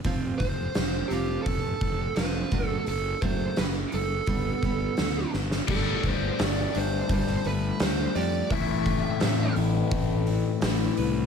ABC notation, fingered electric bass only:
X:1
M:4/4
L:1/8
Q:1/4=85
K:Gmix
V:1 name="Fingered electric bass" clef=bass
F,,, F,,, F,,, F,,, F,,, F,,, F,,, ^F,,, | ^F,,, F,,, F,,, F,,, G,,, G,,, D,, G,,, | G,,, G,,, G,,, G,,, G,,, G,,, D,, F,, | A,,,2 A,, A,,, A,,,2 A,,, C,, |]